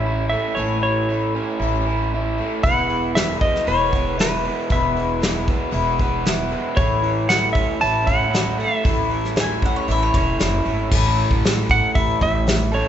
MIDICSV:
0, 0, Header, 1, 7, 480
1, 0, Start_track
1, 0, Tempo, 516796
1, 536, Time_signature, 4, 2, 24, 8
1, 11965, End_track
2, 0, Start_track
2, 0, Title_t, "Electric slide guitar"
2, 0, Program_c, 0, 29
2, 0, Note_on_c, 0, 76, 91
2, 263, Note_off_c, 0, 76, 0
2, 274, Note_on_c, 0, 76, 87
2, 509, Note_on_c, 0, 73, 77
2, 532, Note_off_c, 0, 76, 0
2, 744, Note_off_c, 0, 73, 0
2, 770, Note_on_c, 0, 73, 84
2, 1453, Note_off_c, 0, 73, 0
2, 2447, Note_on_c, 0, 78, 111
2, 2925, Note_off_c, 0, 78, 0
2, 2929, Note_on_c, 0, 76, 102
2, 3152, Note_off_c, 0, 76, 0
2, 3168, Note_on_c, 0, 75, 91
2, 3392, Note_off_c, 0, 75, 0
2, 3418, Note_on_c, 0, 73, 95
2, 3904, Note_off_c, 0, 73, 0
2, 3908, Note_on_c, 0, 71, 85
2, 4385, Note_on_c, 0, 76, 81
2, 4393, Note_off_c, 0, 71, 0
2, 5060, Note_off_c, 0, 76, 0
2, 6286, Note_on_c, 0, 73, 95
2, 6770, Note_on_c, 0, 78, 91
2, 6784, Note_off_c, 0, 73, 0
2, 6988, Note_off_c, 0, 78, 0
2, 6992, Note_on_c, 0, 76, 88
2, 7226, Note_off_c, 0, 76, 0
2, 7254, Note_on_c, 0, 81, 105
2, 7492, Note_on_c, 0, 78, 93
2, 7502, Note_off_c, 0, 81, 0
2, 7989, Note_off_c, 0, 78, 0
2, 7995, Note_on_c, 0, 76, 92
2, 9632, Note_off_c, 0, 76, 0
2, 10874, Note_on_c, 0, 78, 102
2, 11097, Note_off_c, 0, 78, 0
2, 11100, Note_on_c, 0, 76, 99
2, 11343, Note_off_c, 0, 76, 0
2, 11354, Note_on_c, 0, 76, 100
2, 11837, Note_on_c, 0, 73, 73
2, 11842, Note_off_c, 0, 76, 0
2, 11965, Note_off_c, 0, 73, 0
2, 11965, End_track
3, 0, Start_track
3, 0, Title_t, "Mandolin"
3, 0, Program_c, 1, 25
3, 8731, Note_on_c, 1, 80, 86
3, 8948, Note_off_c, 1, 80, 0
3, 8968, Note_on_c, 1, 78, 72
3, 9066, Note_off_c, 1, 78, 0
3, 9067, Note_on_c, 1, 73, 67
3, 9174, Note_off_c, 1, 73, 0
3, 9207, Note_on_c, 1, 76, 84
3, 9305, Note_off_c, 1, 76, 0
3, 9313, Note_on_c, 1, 73, 73
3, 9412, Note_off_c, 1, 73, 0
3, 9423, Note_on_c, 1, 73, 88
3, 9654, Note_off_c, 1, 73, 0
3, 11965, End_track
4, 0, Start_track
4, 0, Title_t, "Overdriven electric guitar"
4, 0, Program_c, 2, 29
4, 0, Note_on_c, 2, 52, 64
4, 0, Note_on_c, 2, 57, 68
4, 53, Note_on_c, 2, 64, 67
4, 287, Note_off_c, 2, 57, 0
4, 771, Note_off_c, 2, 52, 0
4, 775, Note_on_c, 2, 52, 67
4, 1478, Note_off_c, 2, 64, 0
4, 1989, Note_on_c, 2, 64, 71
4, 2683, Note_off_c, 2, 52, 0
4, 2686, Note_on_c, 2, 52, 65
4, 3385, Note_off_c, 2, 64, 0
4, 3389, Note_on_c, 2, 64, 58
4, 3628, Note_on_c, 2, 59, 59
4, 3878, Note_off_c, 2, 64, 0
4, 3881, Note_on_c, 2, 64, 59
4, 4119, Note_on_c, 2, 56, 63
4, 4599, Note_off_c, 2, 52, 0
4, 4603, Note_on_c, 2, 52, 68
4, 4833, Note_off_c, 2, 56, 0
4, 4839, Note_off_c, 2, 59, 0
4, 5100, Note_on_c, 2, 59, 71
4, 5331, Note_off_c, 2, 64, 0
4, 5570, Note_off_c, 2, 59, 0
4, 5815, Note_on_c, 2, 64, 61
4, 6521, Note_off_c, 2, 52, 0
4, 6525, Note_on_c, 2, 52, 62
4, 6766, Note_on_c, 2, 57, 64
4, 6999, Note_on_c, 2, 61, 69
4, 7244, Note_off_c, 2, 64, 0
4, 7468, Note_off_c, 2, 61, 0
4, 7712, Note_on_c, 2, 64, 59
4, 7966, Note_off_c, 2, 57, 0
4, 7970, Note_on_c, 2, 57, 61
4, 8445, Note_off_c, 2, 52, 0
4, 8449, Note_on_c, 2, 52, 64
4, 8685, Note_off_c, 2, 57, 0
4, 8926, Note_off_c, 2, 64, 0
4, 8937, Note_on_c, 2, 61, 63
4, 9415, Note_off_c, 2, 61, 0
4, 9655, Note_off_c, 2, 52, 0
4, 9660, Note_on_c, 2, 64, 56
4, 9893, Note_on_c, 2, 57, 64
4, 10123, Note_off_c, 2, 57, 0
4, 10140, Note_off_c, 2, 64, 0
4, 10150, Note_on_c, 2, 69, 102
4, 11800, Note_off_c, 2, 69, 0
4, 11812, Note_on_c, 2, 69, 85
4, 11834, Note_on_c, 2, 52, 75
4, 11844, Note_on_c, 2, 45, 65
4, 11965, Note_off_c, 2, 45, 0
4, 11965, Note_off_c, 2, 52, 0
4, 11965, Note_off_c, 2, 69, 0
4, 11965, End_track
5, 0, Start_track
5, 0, Title_t, "Twelve-string acoustic guitar"
5, 0, Program_c, 3, 25
5, 0, Note_on_c, 3, 57, 46
5, 0, Note_on_c, 3, 61, 48
5, 0, Note_on_c, 3, 64, 54
5, 289, Note_off_c, 3, 64, 0
5, 293, Note_on_c, 3, 64, 54
5, 296, Note_off_c, 3, 61, 0
5, 306, Note_off_c, 3, 57, 0
5, 309, Note_on_c, 3, 61, 48
5, 331, Note_on_c, 3, 57, 38
5, 527, Note_on_c, 3, 45, 73
5, 528, Note_off_c, 3, 57, 0
5, 529, Note_off_c, 3, 61, 0
5, 531, Note_on_c, 3, 52, 82
5, 534, Note_off_c, 3, 64, 0
5, 539, Note_on_c, 3, 57, 71
5, 540, Note_on_c, 3, 61, 83
5, 550, Note_on_c, 3, 64, 75
5, 1010, Note_off_c, 3, 45, 0
5, 1016, Note_off_c, 3, 57, 0
5, 1016, Note_off_c, 3, 61, 0
5, 1020, Note_off_c, 3, 52, 0
5, 1023, Note_on_c, 3, 52, 51
5, 1037, Note_on_c, 3, 57, 49
5, 1043, Note_on_c, 3, 61, 51
5, 1052, Note_off_c, 3, 64, 0
5, 1056, Note_on_c, 3, 64, 58
5, 1258, Note_off_c, 3, 52, 0
5, 1258, Note_off_c, 3, 64, 0
5, 1265, Note_off_c, 3, 57, 0
5, 1268, Note_off_c, 3, 61, 0
5, 1269, Note_on_c, 3, 64, 47
5, 1286, Note_on_c, 3, 61, 39
5, 1305, Note_on_c, 3, 57, 32
5, 1497, Note_off_c, 3, 61, 0
5, 1501, Note_off_c, 3, 57, 0
5, 1501, Note_off_c, 3, 64, 0
5, 1501, Note_on_c, 3, 45, 70
5, 1503, Note_on_c, 3, 52, 81
5, 1508, Note_on_c, 3, 61, 77
5, 1512, Note_on_c, 3, 57, 77
5, 1519, Note_on_c, 3, 64, 87
5, 1720, Note_off_c, 3, 64, 0
5, 1731, Note_on_c, 3, 64, 57
5, 1736, Note_off_c, 3, 45, 0
5, 1737, Note_off_c, 3, 52, 0
5, 1740, Note_off_c, 3, 61, 0
5, 1742, Note_off_c, 3, 57, 0
5, 1760, Note_on_c, 3, 61, 52
5, 1770, Note_on_c, 3, 57, 47
5, 2207, Note_off_c, 3, 64, 0
5, 2211, Note_on_c, 3, 64, 53
5, 2225, Note_off_c, 3, 61, 0
5, 2230, Note_off_c, 3, 57, 0
5, 2235, Note_on_c, 3, 61, 50
5, 2246, Note_on_c, 3, 57, 38
5, 2451, Note_off_c, 3, 64, 0
5, 2463, Note_off_c, 3, 61, 0
5, 2463, Note_on_c, 3, 40, 74
5, 2466, Note_off_c, 3, 57, 0
5, 2468, Note_on_c, 3, 47, 64
5, 2470, Note_on_c, 3, 56, 75
5, 2471, Note_on_c, 3, 52, 70
5, 2479, Note_on_c, 3, 59, 79
5, 2479, Note_on_c, 3, 64, 89
5, 2921, Note_off_c, 3, 52, 0
5, 2921, Note_off_c, 3, 56, 0
5, 2925, Note_on_c, 3, 52, 46
5, 2930, Note_off_c, 3, 59, 0
5, 2933, Note_on_c, 3, 56, 54
5, 2936, Note_off_c, 3, 40, 0
5, 2939, Note_off_c, 3, 47, 0
5, 2951, Note_off_c, 3, 64, 0
5, 3167, Note_off_c, 3, 52, 0
5, 3171, Note_off_c, 3, 56, 0
5, 3172, Note_on_c, 3, 64, 40
5, 3182, Note_on_c, 3, 59, 43
5, 3193, Note_on_c, 3, 56, 37
5, 3199, Note_on_c, 3, 52, 35
5, 3405, Note_on_c, 3, 40, 68
5, 3407, Note_off_c, 3, 56, 0
5, 3411, Note_off_c, 3, 64, 0
5, 3412, Note_off_c, 3, 52, 0
5, 3416, Note_off_c, 3, 59, 0
5, 3418, Note_on_c, 3, 47, 73
5, 3418, Note_on_c, 3, 56, 70
5, 3423, Note_on_c, 3, 52, 76
5, 3428, Note_on_c, 3, 59, 76
5, 3432, Note_on_c, 3, 64, 90
5, 3647, Note_off_c, 3, 40, 0
5, 3653, Note_off_c, 3, 64, 0
5, 3654, Note_off_c, 3, 47, 0
5, 3654, Note_off_c, 3, 56, 0
5, 3656, Note_off_c, 3, 52, 0
5, 3659, Note_off_c, 3, 59, 0
5, 3664, Note_on_c, 3, 64, 50
5, 3676, Note_on_c, 3, 59, 57
5, 3685, Note_on_c, 3, 56, 42
5, 3698, Note_on_c, 3, 52, 46
5, 4125, Note_off_c, 3, 64, 0
5, 4128, Note_on_c, 3, 64, 43
5, 4132, Note_off_c, 3, 59, 0
5, 4143, Note_on_c, 3, 59, 39
5, 4147, Note_off_c, 3, 56, 0
5, 4158, Note_on_c, 3, 56, 44
5, 4160, Note_off_c, 3, 52, 0
5, 4163, Note_on_c, 3, 52, 35
5, 4354, Note_off_c, 3, 52, 0
5, 4362, Note_on_c, 3, 40, 65
5, 4362, Note_on_c, 3, 47, 74
5, 4364, Note_off_c, 3, 64, 0
5, 4365, Note_on_c, 3, 52, 78
5, 4366, Note_off_c, 3, 56, 0
5, 4369, Note_off_c, 3, 59, 0
5, 4375, Note_on_c, 3, 64, 80
5, 4377, Note_on_c, 3, 56, 83
5, 4380, Note_on_c, 3, 59, 75
5, 4826, Note_off_c, 3, 52, 0
5, 4830, Note_on_c, 3, 52, 51
5, 4832, Note_off_c, 3, 56, 0
5, 4843, Note_on_c, 3, 56, 49
5, 4846, Note_off_c, 3, 40, 0
5, 4846, Note_off_c, 3, 47, 0
5, 4849, Note_off_c, 3, 59, 0
5, 4860, Note_on_c, 3, 59, 61
5, 4864, Note_off_c, 3, 64, 0
5, 4867, Note_on_c, 3, 64, 57
5, 5305, Note_on_c, 3, 40, 86
5, 5312, Note_off_c, 3, 59, 0
5, 5313, Note_off_c, 3, 56, 0
5, 5314, Note_on_c, 3, 47, 73
5, 5316, Note_off_c, 3, 52, 0
5, 5319, Note_on_c, 3, 52, 91
5, 5323, Note_on_c, 3, 59, 81
5, 5324, Note_on_c, 3, 56, 87
5, 5325, Note_off_c, 3, 64, 0
5, 5329, Note_on_c, 3, 64, 84
5, 5547, Note_off_c, 3, 64, 0
5, 5556, Note_off_c, 3, 59, 0
5, 5558, Note_off_c, 3, 40, 0
5, 5558, Note_on_c, 3, 64, 56
5, 5562, Note_off_c, 3, 47, 0
5, 5565, Note_off_c, 3, 52, 0
5, 5567, Note_off_c, 3, 56, 0
5, 5567, Note_on_c, 3, 59, 54
5, 5579, Note_on_c, 3, 56, 51
5, 5591, Note_on_c, 3, 52, 51
5, 6038, Note_off_c, 3, 64, 0
5, 6042, Note_on_c, 3, 64, 52
5, 6045, Note_off_c, 3, 59, 0
5, 6051, Note_off_c, 3, 56, 0
5, 6056, Note_on_c, 3, 59, 55
5, 6062, Note_on_c, 3, 56, 47
5, 6070, Note_off_c, 3, 52, 0
5, 6074, Note_on_c, 3, 52, 44
5, 6275, Note_off_c, 3, 52, 0
5, 6275, Note_on_c, 3, 45, 73
5, 6286, Note_on_c, 3, 52, 74
5, 6287, Note_off_c, 3, 64, 0
5, 6290, Note_off_c, 3, 56, 0
5, 6292, Note_off_c, 3, 59, 0
5, 6294, Note_on_c, 3, 57, 73
5, 6295, Note_on_c, 3, 61, 75
5, 6300, Note_on_c, 3, 64, 79
5, 6760, Note_off_c, 3, 52, 0
5, 6764, Note_off_c, 3, 45, 0
5, 6764, Note_on_c, 3, 52, 52
5, 6772, Note_off_c, 3, 57, 0
5, 6781, Note_off_c, 3, 61, 0
5, 6791, Note_off_c, 3, 64, 0
5, 7252, Note_on_c, 3, 45, 79
5, 7261, Note_off_c, 3, 52, 0
5, 7265, Note_on_c, 3, 52, 74
5, 7269, Note_on_c, 3, 61, 76
5, 7270, Note_on_c, 3, 57, 79
5, 7276, Note_on_c, 3, 64, 75
5, 7478, Note_off_c, 3, 64, 0
5, 7489, Note_on_c, 3, 64, 51
5, 7493, Note_off_c, 3, 45, 0
5, 7493, Note_off_c, 3, 61, 0
5, 7500, Note_off_c, 3, 52, 0
5, 7503, Note_off_c, 3, 57, 0
5, 7505, Note_on_c, 3, 61, 47
5, 7520, Note_on_c, 3, 57, 46
5, 7966, Note_off_c, 3, 64, 0
5, 7970, Note_on_c, 3, 64, 46
5, 7991, Note_off_c, 3, 61, 0
5, 7994, Note_on_c, 3, 61, 42
5, 8004, Note_off_c, 3, 57, 0
5, 8008, Note_on_c, 3, 57, 33
5, 8208, Note_on_c, 3, 45, 64
5, 8213, Note_off_c, 3, 61, 0
5, 8213, Note_off_c, 3, 64, 0
5, 8214, Note_off_c, 3, 57, 0
5, 8217, Note_on_c, 3, 52, 76
5, 8225, Note_on_c, 3, 57, 82
5, 8225, Note_on_c, 3, 61, 71
5, 8228, Note_on_c, 3, 64, 83
5, 8688, Note_off_c, 3, 52, 0
5, 8693, Note_off_c, 3, 45, 0
5, 8694, Note_off_c, 3, 57, 0
5, 8699, Note_on_c, 3, 52, 58
5, 8701, Note_off_c, 3, 61, 0
5, 8703, Note_off_c, 3, 64, 0
5, 8705, Note_on_c, 3, 57, 65
5, 8721, Note_on_c, 3, 61, 64
5, 8730, Note_on_c, 3, 64, 65
5, 9177, Note_off_c, 3, 52, 0
5, 9177, Note_on_c, 3, 45, 83
5, 9178, Note_off_c, 3, 57, 0
5, 9186, Note_off_c, 3, 61, 0
5, 9186, Note_off_c, 3, 64, 0
5, 9188, Note_on_c, 3, 52, 77
5, 9189, Note_on_c, 3, 57, 85
5, 9197, Note_on_c, 3, 61, 88
5, 9197, Note_on_c, 3, 64, 87
5, 9402, Note_off_c, 3, 64, 0
5, 9413, Note_on_c, 3, 64, 52
5, 9418, Note_off_c, 3, 45, 0
5, 9422, Note_off_c, 3, 61, 0
5, 9423, Note_off_c, 3, 52, 0
5, 9424, Note_off_c, 3, 57, 0
5, 9433, Note_on_c, 3, 61, 56
5, 9443, Note_on_c, 3, 57, 49
5, 9884, Note_off_c, 3, 64, 0
5, 9895, Note_on_c, 3, 64, 52
5, 9907, Note_off_c, 3, 61, 0
5, 9912, Note_off_c, 3, 57, 0
5, 9917, Note_on_c, 3, 61, 48
5, 9934, Note_on_c, 3, 57, 46
5, 10138, Note_off_c, 3, 64, 0
5, 10141, Note_on_c, 3, 45, 82
5, 10148, Note_off_c, 3, 57, 0
5, 10149, Note_off_c, 3, 61, 0
5, 10152, Note_on_c, 3, 52, 84
5, 10159, Note_on_c, 3, 57, 76
5, 10164, Note_on_c, 3, 64, 92
5, 10169, Note_on_c, 3, 61, 83
5, 10621, Note_off_c, 3, 45, 0
5, 10628, Note_off_c, 3, 52, 0
5, 10630, Note_off_c, 3, 57, 0
5, 10631, Note_on_c, 3, 52, 65
5, 10635, Note_off_c, 3, 61, 0
5, 10646, Note_on_c, 3, 57, 62
5, 10657, Note_on_c, 3, 61, 57
5, 10663, Note_off_c, 3, 64, 0
5, 10666, Note_on_c, 3, 64, 70
5, 10852, Note_off_c, 3, 64, 0
5, 10863, Note_on_c, 3, 64, 50
5, 10866, Note_off_c, 3, 52, 0
5, 10869, Note_off_c, 3, 61, 0
5, 10873, Note_off_c, 3, 57, 0
5, 10880, Note_on_c, 3, 61, 41
5, 10887, Note_on_c, 3, 57, 42
5, 11095, Note_on_c, 3, 52, 61
5, 11096, Note_off_c, 3, 57, 0
5, 11102, Note_off_c, 3, 64, 0
5, 11107, Note_on_c, 3, 57, 64
5, 11108, Note_off_c, 3, 61, 0
5, 11119, Note_on_c, 3, 61, 55
5, 11122, Note_on_c, 3, 64, 60
5, 11323, Note_off_c, 3, 64, 0
5, 11334, Note_on_c, 3, 64, 47
5, 11338, Note_off_c, 3, 52, 0
5, 11342, Note_off_c, 3, 61, 0
5, 11344, Note_off_c, 3, 57, 0
5, 11354, Note_on_c, 3, 61, 48
5, 11367, Note_on_c, 3, 57, 48
5, 11820, Note_off_c, 3, 64, 0
5, 11824, Note_on_c, 3, 64, 43
5, 11827, Note_off_c, 3, 61, 0
5, 11834, Note_off_c, 3, 57, 0
5, 11839, Note_on_c, 3, 61, 37
5, 11854, Note_on_c, 3, 57, 36
5, 11965, Note_off_c, 3, 57, 0
5, 11965, Note_off_c, 3, 61, 0
5, 11965, Note_off_c, 3, 64, 0
5, 11965, End_track
6, 0, Start_track
6, 0, Title_t, "Upright bass"
6, 0, Program_c, 4, 32
6, 0, Note_on_c, 4, 33, 89
6, 309, Note_off_c, 4, 33, 0
6, 526, Note_on_c, 4, 33, 84
6, 1264, Note_off_c, 4, 33, 0
6, 1482, Note_on_c, 4, 33, 77
6, 2222, Note_off_c, 4, 33, 0
6, 2449, Note_on_c, 4, 28, 69
6, 3186, Note_off_c, 4, 28, 0
6, 3410, Note_on_c, 4, 28, 86
6, 4147, Note_off_c, 4, 28, 0
6, 4364, Note_on_c, 4, 28, 90
6, 5104, Note_off_c, 4, 28, 0
6, 5316, Note_on_c, 4, 28, 96
6, 6059, Note_off_c, 4, 28, 0
6, 6284, Note_on_c, 4, 33, 84
6, 7025, Note_off_c, 4, 33, 0
6, 7255, Note_on_c, 4, 33, 78
6, 7993, Note_off_c, 4, 33, 0
6, 8220, Note_on_c, 4, 33, 76
6, 8957, Note_off_c, 4, 33, 0
6, 9178, Note_on_c, 4, 33, 81
6, 9362, Note_off_c, 4, 33, 0
6, 9417, Note_on_c, 4, 28, 90
6, 9634, Note_off_c, 4, 28, 0
6, 9662, Note_on_c, 4, 30, 77
6, 9877, Note_off_c, 4, 30, 0
6, 9897, Note_on_c, 4, 32, 77
6, 10114, Note_off_c, 4, 32, 0
6, 10137, Note_on_c, 4, 33, 82
6, 10415, Note_off_c, 4, 33, 0
6, 10505, Note_on_c, 4, 45, 87
6, 10780, Note_off_c, 4, 45, 0
6, 10865, Note_on_c, 4, 45, 78
6, 10956, Note_off_c, 4, 45, 0
6, 11105, Note_on_c, 4, 33, 76
6, 11287, Note_off_c, 4, 33, 0
6, 11346, Note_on_c, 4, 33, 108
6, 11897, Note_off_c, 4, 33, 0
6, 11965, End_track
7, 0, Start_track
7, 0, Title_t, "Drums"
7, 2443, Note_on_c, 9, 46, 62
7, 2449, Note_on_c, 9, 36, 97
7, 2536, Note_off_c, 9, 46, 0
7, 2542, Note_off_c, 9, 36, 0
7, 2690, Note_on_c, 9, 46, 43
7, 2782, Note_off_c, 9, 46, 0
7, 2929, Note_on_c, 9, 46, 62
7, 2939, Note_on_c, 9, 38, 101
7, 3022, Note_off_c, 9, 46, 0
7, 3032, Note_off_c, 9, 38, 0
7, 3166, Note_on_c, 9, 46, 44
7, 3168, Note_on_c, 9, 36, 85
7, 3259, Note_off_c, 9, 46, 0
7, 3261, Note_off_c, 9, 36, 0
7, 3305, Note_on_c, 9, 38, 34
7, 3398, Note_off_c, 9, 38, 0
7, 3409, Note_on_c, 9, 46, 58
7, 3502, Note_off_c, 9, 46, 0
7, 3646, Note_on_c, 9, 46, 46
7, 3649, Note_on_c, 9, 36, 76
7, 3739, Note_off_c, 9, 46, 0
7, 3742, Note_off_c, 9, 36, 0
7, 3893, Note_on_c, 9, 46, 73
7, 3903, Note_on_c, 9, 38, 101
7, 3986, Note_off_c, 9, 46, 0
7, 3996, Note_off_c, 9, 38, 0
7, 4131, Note_on_c, 9, 46, 53
7, 4224, Note_off_c, 9, 46, 0
7, 4368, Note_on_c, 9, 36, 95
7, 4369, Note_on_c, 9, 46, 65
7, 4461, Note_off_c, 9, 36, 0
7, 4461, Note_off_c, 9, 46, 0
7, 4612, Note_on_c, 9, 46, 51
7, 4705, Note_off_c, 9, 46, 0
7, 4849, Note_on_c, 9, 46, 66
7, 4860, Note_on_c, 9, 38, 104
7, 4942, Note_off_c, 9, 46, 0
7, 4953, Note_off_c, 9, 38, 0
7, 5089, Note_on_c, 9, 36, 82
7, 5092, Note_on_c, 9, 46, 49
7, 5182, Note_off_c, 9, 36, 0
7, 5184, Note_off_c, 9, 46, 0
7, 5329, Note_on_c, 9, 46, 61
7, 5421, Note_off_c, 9, 46, 0
7, 5567, Note_on_c, 9, 46, 49
7, 5568, Note_on_c, 9, 36, 78
7, 5660, Note_off_c, 9, 46, 0
7, 5661, Note_off_c, 9, 36, 0
7, 5808, Note_on_c, 9, 46, 59
7, 5819, Note_on_c, 9, 38, 97
7, 5901, Note_off_c, 9, 46, 0
7, 5912, Note_off_c, 9, 38, 0
7, 6049, Note_on_c, 9, 46, 40
7, 6141, Note_off_c, 9, 46, 0
7, 6287, Note_on_c, 9, 46, 55
7, 6289, Note_on_c, 9, 36, 104
7, 6380, Note_off_c, 9, 46, 0
7, 6382, Note_off_c, 9, 36, 0
7, 6531, Note_on_c, 9, 46, 45
7, 6624, Note_off_c, 9, 46, 0
7, 6768, Note_on_c, 9, 46, 70
7, 6778, Note_on_c, 9, 38, 99
7, 6861, Note_off_c, 9, 46, 0
7, 6871, Note_off_c, 9, 38, 0
7, 7014, Note_on_c, 9, 36, 84
7, 7014, Note_on_c, 9, 46, 50
7, 7107, Note_off_c, 9, 36, 0
7, 7107, Note_off_c, 9, 46, 0
7, 7255, Note_on_c, 9, 46, 63
7, 7348, Note_off_c, 9, 46, 0
7, 7498, Note_on_c, 9, 36, 75
7, 7499, Note_on_c, 9, 46, 48
7, 7591, Note_off_c, 9, 36, 0
7, 7591, Note_off_c, 9, 46, 0
7, 7741, Note_on_c, 9, 46, 60
7, 7751, Note_on_c, 9, 38, 107
7, 7834, Note_off_c, 9, 46, 0
7, 7844, Note_off_c, 9, 38, 0
7, 7985, Note_on_c, 9, 46, 49
7, 8078, Note_off_c, 9, 46, 0
7, 8218, Note_on_c, 9, 46, 61
7, 8220, Note_on_c, 9, 36, 106
7, 8310, Note_off_c, 9, 46, 0
7, 8313, Note_off_c, 9, 36, 0
7, 8463, Note_on_c, 9, 46, 48
7, 8556, Note_off_c, 9, 46, 0
7, 8590, Note_on_c, 9, 38, 28
7, 8683, Note_off_c, 9, 38, 0
7, 8693, Note_on_c, 9, 46, 74
7, 8703, Note_on_c, 9, 38, 111
7, 8786, Note_off_c, 9, 46, 0
7, 8796, Note_off_c, 9, 38, 0
7, 8935, Note_on_c, 9, 46, 46
7, 8939, Note_on_c, 9, 36, 82
7, 9028, Note_off_c, 9, 46, 0
7, 9031, Note_off_c, 9, 36, 0
7, 9174, Note_on_c, 9, 46, 61
7, 9267, Note_off_c, 9, 46, 0
7, 9415, Note_on_c, 9, 46, 53
7, 9418, Note_on_c, 9, 36, 79
7, 9507, Note_off_c, 9, 46, 0
7, 9511, Note_off_c, 9, 36, 0
7, 9653, Note_on_c, 9, 46, 66
7, 9664, Note_on_c, 9, 38, 99
7, 9746, Note_off_c, 9, 46, 0
7, 9757, Note_off_c, 9, 38, 0
7, 9898, Note_on_c, 9, 46, 43
7, 9990, Note_off_c, 9, 46, 0
7, 10136, Note_on_c, 9, 49, 107
7, 10139, Note_on_c, 9, 36, 98
7, 10229, Note_off_c, 9, 49, 0
7, 10231, Note_off_c, 9, 36, 0
7, 10386, Note_on_c, 9, 46, 54
7, 10479, Note_off_c, 9, 46, 0
7, 10502, Note_on_c, 9, 36, 85
7, 10595, Note_off_c, 9, 36, 0
7, 10629, Note_on_c, 9, 46, 71
7, 10639, Note_on_c, 9, 38, 107
7, 10722, Note_off_c, 9, 46, 0
7, 10732, Note_off_c, 9, 38, 0
7, 10863, Note_on_c, 9, 36, 77
7, 10868, Note_on_c, 9, 46, 56
7, 10956, Note_off_c, 9, 36, 0
7, 10961, Note_off_c, 9, 46, 0
7, 11103, Note_on_c, 9, 36, 93
7, 11109, Note_on_c, 9, 46, 65
7, 11196, Note_off_c, 9, 36, 0
7, 11202, Note_off_c, 9, 46, 0
7, 11344, Note_on_c, 9, 36, 77
7, 11347, Note_on_c, 9, 46, 52
7, 11437, Note_off_c, 9, 36, 0
7, 11440, Note_off_c, 9, 46, 0
7, 11580, Note_on_c, 9, 46, 71
7, 11590, Note_on_c, 9, 38, 100
7, 11672, Note_off_c, 9, 46, 0
7, 11683, Note_off_c, 9, 38, 0
7, 11827, Note_on_c, 9, 46, 49
7, 11920, Note_off_c, 9, 46, 0
7, 11965, End_track
0, 0, End_of_file